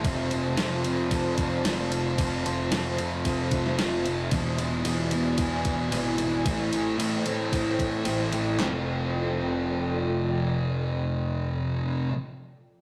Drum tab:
RD |x-x-x-x-x-x-x-x-|x-x-x-x-x-x-x-x-|x-x-x-x-x-x-x-x-|x-x-x-x-x-x-x-x-|
CP |----------------|----------------|----------------|----------------|
SD |----o-------o---|----o------oo---|----------------|----------------|
BD |o-------o-o-----|o-------o-o-----|o-------o-o-----|o-------o-o-----|

RD |----------------|----------------|
CP |x---------------|----------------|
SD |o---------------|----------------|
BD |----------------|----------------|